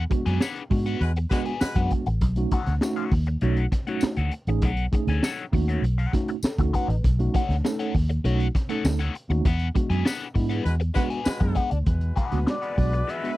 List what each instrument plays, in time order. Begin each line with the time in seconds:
0.10 tine electric piano G#3 B3 D4 F#4, muted overdriven electric guitar stroke, kick, closed hi-hat
0.26 fingered electric bass F#2, overdriven electric guitar D4 G#4 B4 G#5, snare, closed hi-hat
0.40 overdriven electric guitar D4 G#4 B4 F#5, snare, tambourine
0.56 closed hi-hat
0.70 fingered electric bass G#2, tine electric piano G#3 B3 D4 F#4, muted overdriven electric guitar stroke, kick, open hi-hat
0.86 overdriven electric guitar D4 G#4 B4 F#5, closed hi-hat
1.01 fingered electric bass E2, horn section G#3 F#4 B4, muted overdriven electric guitar stroke, closed hi-hat
1.16 muted overdriven electric guitar stroke, closed hi-hat
1.30 horn section G#3 F#4 B4, tine electric piano G#3 B3 D4 F#4, overdriven electric guitar D4 G#4 B4 F#5, kick, snare, closed hi-hat
1.45 overdriven electric guitar D4 G#4 B4 G#5, closed hi-hat
1.60 horn section G#3 F#4 B4, muted overdriven electric guitar stroke, muted fingered electric bass stroke, snare, tambourine
1.75 fingered electric bass F#2, tine electric piano G#3 B3 D4 F#4, overdriven electric guitar D4 G#4 B4 F#5, kick, closed hi-hat
1.91 muted overdriven electric guitar stroke, kick, closed hi-hat
2.06 fingered electric bass A1, muted overdriven electric guitar stroke, closed hi-hat
2.21 fingered electric bass B1, kick, closed hi-hat
2.36 tine electric piano A3 C#4 D#4 F#4, closed hi-hat
2.51 overdriven electric guitar D#4 A4 C#5 F#5, kick, closed hi-hat
2.66 fingered electric bass D2, snare, closed hi-hat
2.81 tine electric piano A3 C#4 D#4 F#4, muted overdriven electric guitar stroke, snare, tambourine
2.96 overdriven electric guitar D#4 A4 C#5 F#5, closed hi-hat
3.11 fingered electric bass D#2, muted overdriven electric guitar stroke, kick, open hi-hat
3.27 muted overdriven electric guitar stroke, closed hi-hat
3.41 fingered electric bass B1, tine electric piano A3 C#4 D#4 F#4, overdriven electric guitar D#4 A4 C#5 F#5, closed hi-hat
3.57 closed hi-hat
3.72 muted overdriven electric guitar stroke, kick, snare, closed hi-hat
3.87 tine electric piano A3 C#4 D#4 F#4, overdriven electric guitar D#4 A4 C#5 F#5, closed hi-hat
4.01 muted overdriven electric guitar stroke, muted fingered electric bass stroke, snare, tambourine
4.16 fingered electric bass D2, overdriven electric guitar D#4 A4 C#5 F#5, closed hi-hat
4.32 muted overdriven electric guitar stroke, closed hi-hat
4.47 fingered electric bass A1, tine electric piano A3 C#4 D#4 G#4, muted overdriven electric guitar stroke, closed hi-hat
4.62 fingered electric bass B1, overdriven electric guitar D#4 A4 C#5 F#5, kick, closed hi-hat
4.77 closed hi-hat
4.92 tine electric piano A3 C#4 D#4 G#4, muted overdriven electric guitar stroke, kick, closed hi-hat
5.07 fingered electric bass D2, overdriven electric guitar D#4 A4 C#5 G#5, snare, closed hi-hat
5.23 overdriven electric guitar D#4 A4 C#5 F#5, snare, tambourine
5.38 closed hi-hat
5.53 fingered electric bass D#2, tine electric piano A3 C#4 D#4 F#4, muted overdriven electric guitar stroke, kick, open hi-hat
5.68 overdriven electric guitar D#4 A4 C#5 F#5, closed hi-hat
5.82 fingered electric bass B1, muted overdriven electric guitar stroke, closed hi-hat
5.98 overdriven electric guitar D#4 A4 C#5 F#5, closed hi-hat
6.13 tine electric piano A3 C#4 D#4 F#4, muted overdriven electric guitar stroke, kick, snare, closed hi-hat
6.28 muted overdriven electric guitar stroke, closed hi-hat
6.43 tine electric piano A4, muted fingered electric bass stroke, snare, tambourine
6.58 fingered electric bass D2, tine electric piano A3 C#4 D#4 F#4, muted overdriven electric guitar stroke, kick, closed hi-hat
6.74 overdriven electric guitar D#4 A4 C#5 F#5, tine electric piano B4, kick, closed hi-hat
6.88 fingered electric bass A1, muted overdriven electric guitar stroke, closed hi-hat
7.04 fingered electric bass B1, kick, closed hi-hat
7.19 tine electric piano A3 C#4 D#4 F#4, closed hi-hat
7.34 overdriven electric guitar D#4 A4 C#5 F#5, kick, closed hi-hat
7.49 fingered electric bass D2, snare, closed hi-hat
7.65 tine electric piano A3 C#4 D#4 A4, muted overdriven electric guitar stroke, snare, tambourine
7.79 overdriven electric guitar D#4 A4 C#5 F#5, closed hi-hat
7.95 fingered electric bass D#2, muted overdriven electric guitar stroke, kick, open hi-hat
8.09 muted overdriven electric guitar stroke, closed hi-hat
8.24 fingered electric bass B1, tine electric piano A3 C#4 D#4 F#4, overdriven electric guitar D#4 A4 C#5 F#5, closed hi-hat
8.40 closed hi-hat
8.55 muted overdriven electric guitar stroke, kick, snare, closed hi-hat
8.69 tine electric piano A3 C#4 D#4 A4, overdriven electric guitar D#4 A4 C#5 F#5, closed hi-hat
8.85 fingered electric bass D2, muted overdriven electric guitar stroke, snare, tambourine
8.99 overdriven electric guitar D#4 A4 C#5 F#5, closed hi-hat
9.15 muted overdriven electric guitar stroke, closed hi-hat
9.29 fingered electric bass D#2, tine electric piano A3 C#4 D#4 F#4, muted overdriven electric guitar stroke, closed hi-hat
9.45 fingered electric bass E2, overdriven electric guitar D4 G#4 B4 F#5, kick, closed hi-hat
9.59 closed hi-hat
9.75 tine electric piano G#3 B3 D4 F#4, muted overdriven electric guitar stroke, kick, closed hi-hat
9.90 fingered electric bass F#2, overdriven electric guitar D4 G#4 B4 G#5, closed hi-hat
10.05 overdriven electric guitar D4 G#4 B4 F#5, snare, tambourine
10.20 closed hi-hat
10.34 fingered electric bass G#2, tine electric piano G#3 B3 D4 E4, muted overdriven electric guitar stroke, kick, open hi-hat
10.49 overdriven electric guitar D4 G#4 B4 F#5, closed hi-hat
10.64 fingered electric bass E2, horn section G#3 F#4 B4, muted overdriven electric guitar stroke, closed hi-hat
10.80 muted overdriven electric guitar stroke, closed hi-hat
10.94 horn section G#3 F#4 B4, tine electric piano G#3 B3 D4 F#4, overdriven electric guitar D4 G#4 B4 F#5, kick, snare, closed hi-hat
11.10 overdriven electric guitar D4 G#4 B4 G#5, closed hi-hat
11.25 horn section G#3 F#4 B4, muted fingered electric bass stroke, snare, tambourine
11.40 fingered electric bass F#2, tine electric piano G#3 B3 D4 G#4, muted overdriven electric guitar stroke, kick, closed hi-hat
11.55 overdriven electric guitar D4 G#4 B4 F#5, kick, closed hi-hat
11.71 fingered electric bass D2, muted overdriven electric guitar stroke, closed hi-hat
11.86 fingered electric bass E2, horn section G#3 F#4 B4, kick, closed hi-hat
12.01 closed hi-hat
12.16 overdriven electric guitar D4 G#4 B4 F#5, kick, closed hi-hat
12.32 fingered electric bass D2, tine electric piano G#3 B3 D4 F#4, snare, closed hi-hat
12.47 analog synth lead D5, muted overdriven electric guitar stroke, snare
12.62 overdriven electric guitar D4 G#4 B4 F#5, closed hi-hat
12.77 fingered electric bass B1, tine electric piano G#3 B3 D4 F#4, muted overdriven electric guitar stroke, kick, open hi-hat
12.93 muted overdriven electric guitar stroke, closed hi-hat
13.07 overdriven electric guitar D4 G#4 B4 F#5, analog synth lead E5, closed hi-hat
13.23 tine electric piano G#3 B3 D4 F#4, closed hi-hat